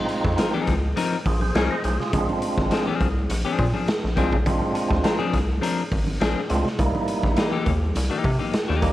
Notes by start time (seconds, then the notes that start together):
Already playing: G#3 C4 D#4 F4
0.09 closed hi-hat
0.25 F2, kick, snare, high conga
0.37 F3 C4 D#4 A#4, snare, closed hi-hat, muted conga
0.53 F3 C4 D#4 G#4, muted conga, high conga
0.67 C#2, kick, snare, closed hi-hat
0.96 F3 C4 D#4 A#4, closed hi-hat, high conga
1.26 A#1 F4 G#4, kick, open hi-hat, high conga
1.41 G#4 C5, high conga
1.55 C2 F3 C4 D#4 G#4 A#4 C#5, snare, closed hi-hat, muted conga
1.70 C5 D#5, muted conga
1.84 B1 G#4 C5, closed hi-hat
1.99 F4 G#4, snare, low conga
2.13 A#1 G#3 C4 D4 F4, kick, closed hi-hat, muted conga, low conga
2.29 muted conga, high conga
2.42 closed hi-hat
2.58 G#1, kick, snare, high conga
2.71 F3 C4 D4 G#4, snare, closed hi-hat, muted conga
2.87 F3 C4 D4 G#4, muted conga, high conga
3.01 C2, kick, closed hi-hat
3.30 A#1, closed hi-hat, high conga
3.45 F3 C4 D4 G#4, muted conga
3.58 A#2, kick, open hi-hat, high conga
3.74 F3 C4 D4 G#4, high conga
3.88 snare, closed hi-hat, muted conga
4.03 A#1, snare, muted conga
4.16 C2 F3 G#3 C4 D4 F4 G#4, kick, snare, closed hi-hat
4.32 B1, kick, low conga
4.46 A#1 G#3 C4 D4 F4, kick, closed hi-hat, muted conga, low conga
4.62 high conga
4.75 closed hi-hat
4.91 D2, kick, snare, high conga
5.04 F3 C4 D4 A#4, snare, closed hi-hat, muted conga
5.19 F3 C4 D4 G#4, muted conga, high conga
5.33 C2, kick, snare, closed hi-hat
5.61 F3 C4 D4 A#4, closed hi-hat, muted conga, high conga
5.91 G#1, kick, open hi-hat, high conga
6.07 high conga
6.20 A#1 F3 C4 D4 G#4, snare, closed hi-hat
6.36 muted conga
6.50 C#2 G#3 C4 D4 F4, closed hi-hat
6.65 snare, low conga
6.78 C2 G3 A#3 D#4 E4, kick, closed hi-hat, low conga
6.95 muted conga, high conga
7.08 closed hi-hat
7.23 A#1, kick, snare, high conga
7.36 E3 A#3 D#4 G4, snare, closed hi-hat, muted conga
7.52 E3 A#3 D#4 G4, high conga
7.66 D#2, kick, closed hi-hat, low conga
7.95 C2, closed hi-hat, high conga
8.10 E3 A#3 D#4 G4, muted conga
8.24 C3, kick, open hi-hat, high conga
8.39 E3 A#3 D#4 G4, high conga
8.53 snare, closed hi-hat
8.68 D#2 E3 A#3 D#4 G4, snare
8.82 D#2 G3 A#3 D#4 G4, kick, snare, closed hi-hat